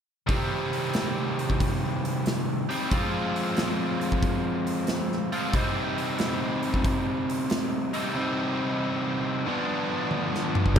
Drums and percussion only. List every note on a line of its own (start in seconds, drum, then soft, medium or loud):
0.29 kick medium
0.29 open hi-hat medium
0.73 open hi-hat soft
0.94 snare loud
0.94 open hi-hat medium
1.39 open hi-hat soft
1.50 kick medium
1.60 kick medium
1.60 open hi-hat medium
2.05 open hi-hat soft
2.26 snare medium
2.26 open hi-hat medium
2.71 open hi-hat soft
2.91 kick loud
2.91 open hi-hat medium
3.36 open hi-hat soft
3.57 snare loud
3.57 open hi-hat medium
4.01 open hi-hat soft
4.12 kick medium
4.22 kick medium
4.22 open hi-hat medium
4.67 open hi-hat soft
4.87 snare medium
4.87 open hi-hat medium
5.12 snare soft
5.33 open hi-hat soft
5.54 kick loud
5.54 open hi-hat medium
5.98 open hi-hat soft
6.19 snare loud
6.19 open hi-hat medium
6.63 open hi-hat soft
6.74 kick medium
6.84 kick loud
6.84 open hi-hat medium
7.30 open hi-hat soft
7.50 snare loud
7.50 open hi-hat medium
7.94 open hi-hat soft
10.11 high tom soft
10.35 snare medium
10.55 mid tom medium
10.66 kick medium
10.76 crash medium